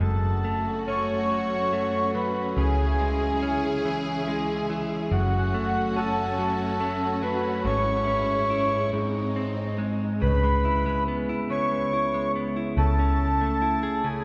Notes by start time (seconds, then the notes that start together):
0.00 F#1 F#2 A3 C#4 F#4 A4
0.44 A3
0.88 C#4 C#5
1.30 F#3
1.73 A3
2.15 F#3 B4
2.56 C#2 C#3 E4 G#4
3.00 G#3
3.43 C#4
3.85 E3
4.28 G#3
4.70 E3
5.11 F#1 F#2 A3 C#4 F#4
5.54 A3
5.96 C#4 A4
6.39 F#3
6.80 A3
7.23 F#3 B4
7.65 G#1 G#2 G#3 E4 C#5
8.07 C#4
8.50 E4
8.93 G#2 C4 D#4
9.36 C4
9.78 G#3
10.22 C#2 C#3 B4
10.44 G#3
10.65 E4
10.86 G#3
11.08 B3
11.29 E4
11.50 C#3 C#5
11.71 G#3
11.93 E4
12.14 G#3
12.36 B3
12.56 E4
12.77 C#2 C#3 A4
12.99 C#4
13.41 A3
13.62 E4
13.83 G#4
14.04 C#3 G#4